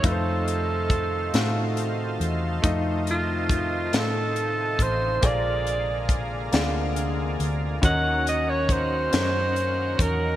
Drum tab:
HH |xxxxxx|xxxxxx|xxxxxx|xxxxxx|
SD |---o--|---o--|---o--|---o--|
BD |o-o---|o-o--o|o-o---|o-o--o|